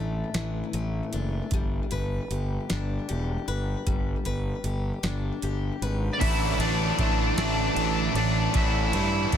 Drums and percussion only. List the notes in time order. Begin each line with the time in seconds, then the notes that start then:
0.34 snare, closed hi-hat
0.73 closed hi-hat
1.13 closed hi-hat
1.51 kick, closed hi-hat
1.91 closed hi-hat
2.31 closed hi-hat
2.70 snare, closed hi-hat
3.09 closed hi-hat
3.48 closed hi-hat
3.87 kick, closed hi-hat
4.25 closed hi-hat
4.64 closed hi-hat
5.03 snare, closed hi-hat
5.42 closed hi-hat
5.82 closed hi-hat
6.21 kick, crash, ride
6.60 ride
6.99 kick, ride
7.38 snare, ride
7.76 ride
8.15 ride
8.54 kick, ride
8.93 ride
9.32 kick, ride